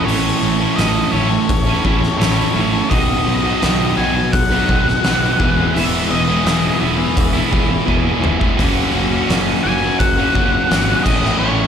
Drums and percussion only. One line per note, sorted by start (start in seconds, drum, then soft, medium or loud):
0.08 open hi-hat medium
0.79 snare loud
0.79 open hi-hat medium
1.49 kick loud
1.49 open hi-hat medium
1.85 kick medium
2.03 snare soft
2.21 snare loud
2.21 open hi-hat medium
2.91 kick loud
2.91 open hi-hat medium
3.62 snare loud
3.62 open hi-hat medium
4.33 kick loud
4.33 open hi-hat medium
4.69 kick medium
4.88 snare soft
5.04 snare loud
5.04 open hi-hat medium
5.40 kick loud
5.76 open hi-hat medium
6.46 snare loud
6.46 open hi-hat medium
7.17 kick loud
7.17 open hi-hat medium
7.53 kick medium
7.88 kick medium
8.24 mid tom loud
8.41 kick medium
8.59 kick loud
8.59 open hi-hat medium
8.59 crash medium
9.30 snare loud
9.30 open hi-hat medium
10.00 kick loud
10.00 open hi-hat medium
10.35 kick medium
10.71 snare loud
10.71 open hi-hat medium
11.06 kick loud
11.06 crash loud
11.25 snare soft